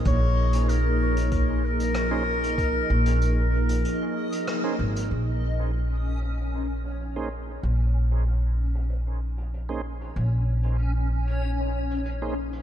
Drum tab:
HH |x--xx--xx--xx--x|x--xx--xx--xx--x|x--xx--xx--xx--x|x--xx--xx--xx--x|
SD |------------r---|------------r---|----------------|----------------|
BD |o-------o-------|o---------------|----------------|----------------|

HH |x--xx--xx--xx--x|
SD |----------------|
BD |----------------|